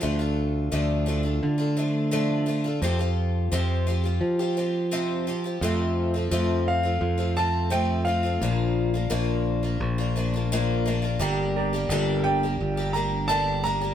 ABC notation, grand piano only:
X:1
M:4/4
L:1/8
Q:1/4=86
K:F
V:1 name="Grand piano"
z8 | z8 | z3 f2 a g f- | f3 z4 z |
z3 g2 b a b |]